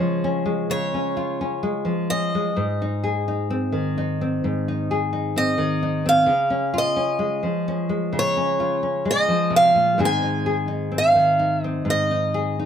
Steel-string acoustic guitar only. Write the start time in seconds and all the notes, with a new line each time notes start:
Already playing: C#5
0.71 C#5
2.10 D#5
5.38 D#5
6.09 F5
6.78 D#5
8.19 C#5
9.11 D#5
9.56 F5
10.05 G#5
10.98 F5
11.65 D#5
11.90 D#5